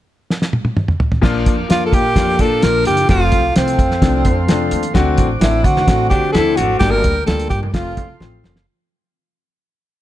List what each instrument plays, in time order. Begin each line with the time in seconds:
0.30 snare
0.42 snare
0.53 high tom
0.65 high tom
0.77 mid tom
0.88 mid tom
1.00 floor tom
1.12 floor tom
1.22 upright bass A#1, upright piano F3 A#3 D4 F4, tonewheel organ A#4 F5 D6, kick, snare, crash
1.46 upright bass F2, kick, closed hi-hat
1.69 upright bass F2, upright piano F3 A#3 D4 F4, tenor saxophone F4, snare, closed hi-hat
1.86 tenor saxophone A4
1.93 upright bass A#2, clean electric guitar A#3 G4, tenor saxophone G4, kick, closed hi-hat
2.15 upright bass F2, upright piano F3 A#3 D4 F4, clean electric guitar A3 F4, kick, snare, closed hi-hat
2.39 upright bass A#2, clean electric guitar F3 D4, tenor saxophone A4, kick, closed hi-hat
2.62 upright bass A#1, upright piano F3 A#3 D4 F4, tenor saxophone A#4, snare, closed hi-hat
2.85 upright bass F#1, tenor saxophone G4, closed hi-hat
2.97 closed hi-hat
3.09 upright bass F1, upright piano F3 A3 C4 F4, tenor saxophone F4, tonewheel organ A4 F5 C6, kick, snare, closed hi-hat
3.32 upright bass C2, kick, closed hi-hat
3.55 upright bass C2, upright piano F3 A3 C4 F4, tenor saxophone C4, snare, closed hi-hat
3.68 closed hi-hat
3.79 upright bass F2, kick, closed hi-hat
3.91 snare
4.01 upright bass C2, upright piano F3 A3 C4 D4, kick, snare, closed hi-hat
4.25 upright bass F2, kick, closed hi-hat
4.48 upright bass F1, upright piano F3 A3 C4 D4, snare, closed hi-hat
4.71 upright bass D#2, closed hi-hat
4.83 closed hi-hat
4.94 upright bass D2, upright piano A3 C4 D4 F#4, tonewheel organ C5 F#5 D6, kick, snare, closed hi-hat, muted conga
5.18 upright bass A1, kick, closed hi-hat, muted conga
5.40 upright bass A1, upright piano A3 C4 D4 A4, tenor saxophone E4, snare, closed hi-hat, high conga
5.64 upright bass D3, tenor saxophone F#4, kick, closed hi-hat
5.77 snare, low conga
5.86 upright bass A1, upright piano A3 C4 D4 F#4, kick, snare, closed hi-hat
6.10 upright bass D3, clean electric guitar F#3 D4, tenor saxophone G4, kick, closed hi-hat
6.32 upright bass D2, upright piano A3 C4 D4 E4, clean electric guitar E4, tenor saxophone A4, snare, closed hi-hat, high conga
6.56 upright bass G#1, clean electric guitar A3 F#4, tenor saxophone F#4, closed hi-hat, high conga
6.79 upright bass G1, upright piano G3 A#3 D4 G4, tenor saxophone G4, tonewheel organ A#4 G5, kick, snare, closed hi-hat, muted conga
6.91 tenor saxophone A#4
7.04 upright bass D2, kick, closed hi-hat, muted conga
7.26 upright bass D2, upright piano G3 A#3 D4 F4, tenor saxophone A4, snare, closed hi-hat, high conga
7.40 closed hi-hat
7.50 upright bass G2, tenor saxophone G4, kick, closed hi-hat
7.63 low conga
7.73 upright bass F1, upright piano F3 A3 C4 F4, tenor saxophone F4, tonewheel organ A4 F5 C6, kick, snare, closed hi-hat
7.97 upright bass C2, kick, closed hi-hat, low conga
8.20 upright bass A1, upright piano F3 A3 C4 F4, snare, high conga
8.43 upright bass F#1, snare, high conga
8.56 snare